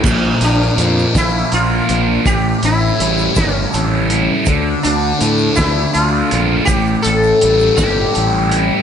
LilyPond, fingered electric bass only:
\new Staff \with { instrumentName = "Fingered electric bass" } { \clef bass \time 6/8 \tempo 4. = 54 bes,,8 bes,,8 f,8 bes,,8 bes,,8 bes,,8 | a,,8 a,,8 a,,8 g,,8 a,,4 | d,8 d,8 a,8 d,8 d,8 bes,,8 | a,,8 a,,8 a,,8 g,,8 a,,4 | }